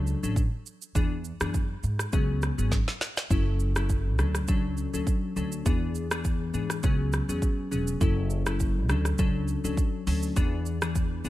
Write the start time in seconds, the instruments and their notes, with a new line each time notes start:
Already playing: upright bass C#2, synth keys F#3 C#4 D4 A4
0.07 shaker
0.23 upright bass A1, synth keys F#3 C#4 D4 A4, shaker
0.36 kick, shaker
0.66 shaker
0.82 shaker
0.95 upright bass E2, synth keys E3 B3 D4 G#4, kick, shaker
1.25 shaker
1.40 upright bass F#2, synth keys E3 B3 D4 G#4, cross-stick, shaker
1.54 kick, shaker
1.83 upright bass G#2, shaker
1.99 cross-stick, shaker
2.12 upright bass C#2, synth keys F#3 B3 C#4 G#4, kick, shaker
2.42 cross-stick, shaker
2.58 upright bass G#1, synth keys F#3 B3 C#4 G#4, shaker
2.71 kick, snare, shaker
2.88 snare
3.01 snare, shaker
3.17 snare, shaker
3.30 upright bass F#1, synth keys F#3 C#4 E4 A4, kick, shaker
3.60 shaker
3.76 synth keys F#3 C#4 E4 A4, cross-stick, shaker
3.89 kick, shaker
4.19 upright bass D2, synth keys F#3 C#4 D4 A4, cross-stick, shaker
4.35 cross-stick, shaker
4.48 upright bass C#2, synth keys F#3 C#4 D4 A4, kick, shaker
4.77 shaker
4.93 upright bass D2, synth keys F#3 C#4 D4 A4, shaker
5.07 kick, shaker
5.36 upright bass D2, synth keys F#3 C#4 D4 A4, shaker
5.52 shaker
5.65 upright bass E2, synth keys E3 B3 D4 G#4, kick, shaker
5.95 shaker
6.11 synth keys E3 B3 D4 G#4, cross-stick, shaker
6.25 kick, shaker
6.54 upright bass G#2, synth keys E3 B3 D4 G#4, shaker
6.70 cross-stick, shaker
6.83 upright bass C#2, synth keys F#3 B3 C#4 G#4, kick, shaker
7.13 cross-stick, shaker
7.29 upright bass E2, synth keys F#3 B3 C#4 G#4, shaker
7.42 kick, shaker
7.71 upright bass E1, synth keys F#3 B3 C#4 G#4, shaker
7.87 shaker
8.01 upright bass F#1, synth keys F#3 C#4 E4 A4, kick, shaker
8.30 shaker
8.46 synth keys F#3 C#4 E4 A4, cross-stick, shaker
8.60 kick, shaker
8.89 upright bass D2, synth keys F#3 C#4 D4 A4, cross-stick, shaker
9.05 cross-stick, shaker
9.18 upright bass C#2, synth keys F#3 C#4 D4 A4, kick, shaker
9.48 shaker
9.64 upright bass D2, synth keys F#3 C#4 D4 A4, shaker
9.77 kick, shaker
10.07 upright bass D2, synth keys F#3 C#4 D4 A4, open hi-hat, shaker
10.23 shaker
10.36 upright bass E2, synth keys E3 B3 D4 G#4, kick, shaker
10.66 shaker
10.82 synth keys E3 B3 D4 G#4, cross-stick, shaker
10.95 kick, shaker
11.24 upright bass G#2, synth keys E3 B3 D4 G#4, shaker